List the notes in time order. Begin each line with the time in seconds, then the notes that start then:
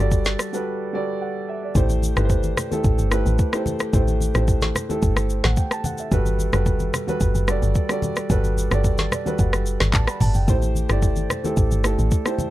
Already playing: B4
0.00 G1 G3 F#4 A4 D5
0.11 kick, shaker
0.25 snare, shaker
0.39 cross-stick, shaker
0.53 G3 F#4 A4 B4, shaker
0.93 G3 F#4 A4 D5
1.21 F#5
1.49 E5
1.63 D5
1.75 A1 A3 E4 G4 C5, kick, low conga, shaker
1.90 high conga, shaker
2.02 high conga, shaker
2.16 G1 A3 E4 G4 B4, cross-stick, shaker
2.25 C5
2.30 kick, low conga, shaker
2.43 high conga, shaker
2.57 cross-stick, low conga, shaker
2.71 A3 E4 G4 A4, high conga, shaker
2.84 A1, kick, shaker
2.99 G1, high conga, shaker
3.11 A3 E4 G4 B4, cross-stick, shaker
3.26 A1, high conga, shaker
3.39 kick, shaker
3.53 A3 E4 G4 C5, cross-stick, shaker
3.66 high conga, low conga, shaker
3.80 cross-stick, shaker
3.93 A1 A3 E4 G4 C5, kick, low conga, shaker
4.08 high conga, shaker
4.20 high conga, shaker
4.34 A1 A3 E4 G4 C5, cross-stick, shaker
4.48 kick, low conga, shaker
4.62 snare, high conga, shaker
4.75 cross-stick, low conga, shaker
4.89 A3 E4 G4 A4, high conga, shaker
5.02 G1, kick, shaker
5.17 cross-stick, high conga, shaker
5.30 shaker
5.44 A1 F#5, cross-stick, snare, high conga, shaker
5.57 G5, kick, shaker
5.71 A5, cross-stick, shaker
5.84 F#5, high conga, low conga, shaker
5.98 E5, shaker
6.11 G1 G3 F#4 A4 B4, kick, low conga, shaker
6.26 high conga, shaker
6.39 high conga, shaker
6.53 F#1 G3 F#4 A4 B4, cross-stick, shaker
6.66 kick, low conga, shaker
6.80 high conga, shaker
6.94 cross-stick, low conga, shaker
7.07 G3 F#4 A4 B4, high conga, shaker
7.20 G1, kick, shaker
7.35 F#1, high conga, shaker
7.48 G3 F#4 A4 D5, cross-stick, shaker
7.62 G1, high conga, shaker
7.75 kick, shaker
7.89 G3 F#4 A4 D5, cross-stick, shaker
8.02 high conga, low conga, shaker
8.16 cross-stick, shaker
8.29 G1 G3 F#4 A4 B4, kick, low conga, shaker
8.44 high conga, shaker
8.57 high conga, shaker
8.71 G1 G3 F#4 A4 D5, cross-stick, shaker
8.84 kick, low conga, shaker
8.98 snare, high conga, shaker
9.12 D5, cross-stick, low conga, shaker
9.25 G3 F#4 A4 B4, high conga, shaker
9.39 F#1 F#5, kick, shaker
9.53 cross-stick, high conga, shaker
9.66 shaker
9.80 G1, cross-stick, snare, high conga, shaker
9.93 A1 A5, kick, clap, shaker
10.07 B5, cross-stick, shaker
10.20 G1 A5, mid tom, open hi-hat, high conga, low conga, shaker
10.34 F#1 G5, shaker
10.48 A1 A3 E4 G4 C5, kick, low conga, shaker
10.62 high conga, shaker
10.75 high conga, shaker
10.89 G1 A3 E4 G4 D5, cross-stick, shaker
11.02 kick, low conga, shaker
11.16 high conga, shaker
11.30 cross-stick, low conga, shaker
11.44 A3 E4 G4 A4, high conga, shaker
11.57 A1, kick, shaker
11.71 G1, high conga, shaker
11.84 A3 E4 G4 A4, cross-stick, shaker
11.99 A1, high conga, shaker
12.11 kick, shaker
12.25 A3 E4 G4 C5, cross-stick, shaker
12.38 high conga, low conga, shaker